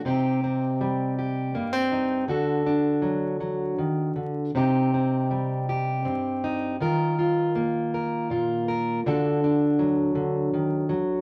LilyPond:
\new Staff \with { instrumentName = "Steel-string acoustic guitar" } { \time 6/8 \key c \dorian \tempo 4. = 54 << { <c' ees' g'>8 c'4 g'8 bes16 c'16 ees'8 | <d' fis' a'>8 d'2~ d'8 | <c' ees' g'>8 c'4 g'8 c'8 ees'8 | <f' bes'>8 f'4 bes'8 f'8 bes'8 |
<d' fis' a'>8 d'2~ d'8 | } \\ { c4 g4 g,4 | d4 fis8 fis8 ees8 d8 | c4 g4 g,4 | ees4 bes4 bes,4 |
d4 fis8 d8 ees8 fis8 | } >> }